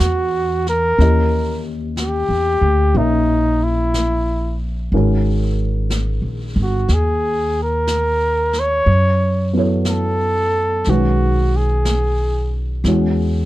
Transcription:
Already playing: grand piano F#3 A#3 C#4 D#4 G#4 A#4 C#5 D#5 F5, flugelhorn F#4
0.00 upright bass E2, brush sweep, snare, hi-hat pedal
0.66 flugelhorn A#4, snare
0.98 upright bass D#2, grand piano E3 A#3 C#4 G4 D#5, brush sweep, snare
1.97 flugelhorn G4, brush sweep, snare, hi-hat pedal
2.29 upright bass E2
2.61 upright bass D2
2.94 upright bass A#1, grand piano A#3 C#4 E5, flugelhorn D#4, brush sweep
3.64 flugelhorn E4
3.94 brush sweep, snare, hi-hat pedal
4.92 upright bass G#1, grand piano D#3 G#3 C#4 F#4 A#4, brush sweep
5.90 brush sweep, snare, hi-hat pedal
6.22 upright bass A#1
6.56 upright bass G1
6.63 flugelhorn F#4
6.88 upright bass D#2, brush sweep, snare
6.94 flugelhorn G#4
7.63 flugelhorn A#4
7.87 brush sweep, snare, hi-hat pedal
8.53 snare
8.59 flugelhorn C#5
8.86 upright bass F#2, brush sweep
9.53 grand piano F#3 B3 E4 A4
9.58 grand piano C#5
9.85 brush sweep, snare, hi-hat pedal
9.90 flugelhorn A4
10.84 upright bass B1, grand piano D#3, brush sweep, snare
10.88 grand piano G#3 C#4 F#4 B4, flugelhorn F#4
11.56 flugelhorn G#4
11.85 brush sweep, snare, hi-hat pedal
12.84 upright bass E2, grand piano E3 G#3 C#4, brush sweep, snare
12.88 grand piano F#4

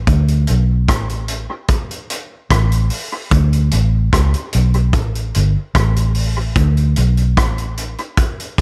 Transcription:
0.07 fingered electric bass D2, kick, closed hi-hat
0.28 closed hi-hat
0.47 fingered electric bass B1, closed hi-hat
0.89 fingered electric bass A1, kick, cross-stick, closed hi-hat
1.09 closed hi-hat
1.28 closed hi-hat
1.68 kick, closed hi-hat
1.91 closed hi-hat
2.10 closed hi-hat
2.50 fingered electric bass A1, kick, cross-stick, closed hi-hat
2.72 closed hi-hat
2.90 open hi-hat
3.31 fingered electric bass D2, kick, closed hi-hat
3.53 closed hi-hat
3.71 fingered electric bass A1, closed hi-hat
4.13 fingered electric bass C#2, kick, cross-stick, closed hi-hat
4.34 closed hi-hat
4.53 fingered electric bass B1, closed hi-hat
4.74 closed hi-hat
4.93 fingered electric bass A1, kick, closed hi-hat
5.15 closed hi-hat
5.34 fingered electric bass G1, closed hi-hat
5.75 fingered electric bass A1, kick, cross-stick, closed hi-hat
5.96 closed hi-hat
6.15 open hi-hat
6.56 fingered electric bass D2, kick, closed hi-hat
6.77 closed hi-hat
6.96 fingered electric bass B1, closed hi-hat
7.17 closed hi-hat
7.37 fingered electric bass A1, kick, cross-stick, closed hi-hat
7.58 closed hi-hat
7.77 closed hi-hat
7.98 closed hi-hat
8.17 kick, closed hi-hat
8.40 closed hi-hat

